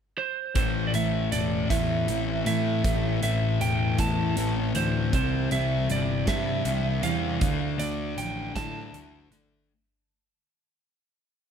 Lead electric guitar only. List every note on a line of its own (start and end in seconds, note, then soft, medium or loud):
0.18 0.55 C5 medium
0.56 0.85 C5 medium
0.87 0.94 D5 medium
0.95 1.32 E5 medium
1.32 1.70 D5 medium
1.70 2.43 E5 medium
2.47 3.19 E5 medium
3.23 3.62 E5 medium
3.61 3.99 G5 medium
4.00 4.78 A5 loud
4.77 5.11 C5 medium
5.15 5.49 C5 medium
5.52 5.91 E5 medium
5.91 6.28 D5 medium
6.28 7.03 E5 medium
7.03 7.79 F5 medium
7.79 8.18 D5 medium
8.18 8.55 G5 medium
8.56 9.37 A5 medium